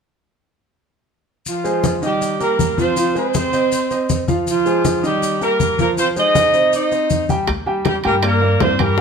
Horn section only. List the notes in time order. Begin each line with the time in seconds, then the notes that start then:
1.47 F3 F4
2.04 G3 G4
2.41 A#3 A#4
2.79 C4 C5
3.16 C4 C5
4.48 F3 F4
5.05 G3 G4
5.42 A#3 A#4
5.80 A#3 A#4
6.00 C4 C5
6.19 D#4 D#5
6.74 D#4 D#5
7.87 G3 G4
8.05 A#3 A#4
8.25 A#3 A#4
8.61 C4 C5
8.81 A#3 A#4